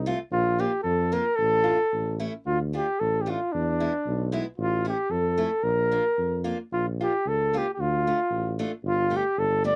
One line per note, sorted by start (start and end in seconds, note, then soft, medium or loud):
0.00 0.13 C2 medium
0.06 0.18 A3 medium
0.06 0.18 C4 medium
0.06 0.18 F4 medium
0.32 0.66 A#1 loud
0.32 0.62 F4 medium
0.58 0.71 A#3 medium
0.58 0.70 D4 soft
0.58 0.71 F4 medium
0.58 0.82 G4 medium
0.83 1.19 F2 medium
0.83 1.14 A4 medium
1.12 1.24 A#3 medium
1.12 1.24 D4 medium
1.12 1.24 F4 medium
1.12 1.37 A#4 medium
1.36 1.73 A1 medium
1.36 2.21 A4 loud
1.64 1.77 A3 soft
1.64 1.77 D4 soft
1.64 1.77 F4 medium
1.92 2.28 A1 medium
2.20 2.32 A3 medium
2.20 2.32 C#4 medium
2.20 2.32 E4 medium
2.46 2.81 D2 medium
2.46 2.59 F4 medium
2.73 2.85 A3 medium
2.73 2.86 D4 medium
2.73 2.86 F4 medium
2.73 3.02 G4 medium
3.00 3.35 A1 medium
3.00 3.23 A4 medium
3.22 3.32 G4 medium
3.26 3.38 A3 medium
3.26 3.39 D4 medium
3.26 3.39 F4 medium
3.30 3.54 F4 medium
3.52 3.88 E2 medium
3.52 4.34 D4 medium
3.80 3.92 G#3 medium
3.80 3.92 B3 soft
3.80 3.92 E4 medium
4.07 4.40 B1 medium
4.32 4.44 G#3 medium
4.32 4.44 B3 medium
4.32 4.44 E4 medium
4.57 4.92 A1 medium
4.57 4.84 F4 medium
4.85 4.96 A3 medium
4.85 4.97 C#4 soft
4.85 4.96 E4 medium
4.85 5.12 G4 medium
5.10 5.45 F2 medium
5.10 5.65 A4 medium
5.38 5.49 A3 medium
5.38 5.50 C#4 medium
5.38 5.50 E4 medium
5.63 5.98 A#1 medium
5.63 6.47 A#4 loud
5.92 6.03 A#3 medium
5.92 6.03 D4 soft
5.92 6.03 F4 medium
6.18 6.53 F2 medium
6.44 6.57 A#3 medium
6.44 6.57 D4 medium
6.44 6.57 F4 medium
6.71 7.07 A#1 medium
6.71 6.86 F4 medium
7.01 7.12 A#3 soft
7.01 7.12 D4 soft
7.01 7.12 F4 medium
7.01 7.29 G4 medium
7.26 7.60 C#2 medium
7.26 7.59 A4 medium
7.53 7.65 A#3 medium
7.53 7.65 D4 medium
7.53 7.66 F4 medium
7.57 7.73 G4 medium
7.73 7.82 G4 medium
7.78 8.13 D2 medium
7.78 8.62 F4 medium
8.07 8.18 A3 medium
8.07 8.18 D4 soft
8.07 8.19 F4 medium
8.30 8.65 A1 medium
8.59 8.71 A3 medium
8.59 8.71 D4 medium
8.59 8.71 F4 medium
8.83 9.18 G1 medium
8.88 9.18 F4 loud
9.10 9.23 A3 medium
9.10 9.23 D4 medium
9.10 9.23 G4 medium
9.16 9.40 G4 medium
9.37 9.72 G1 medium
9.37 9.65 A4 medium
9.64 9.76 A3 medium
9.64 9.76 D4 medium
9.64 9.76 G4 medium
9.64 9.76 D5 loud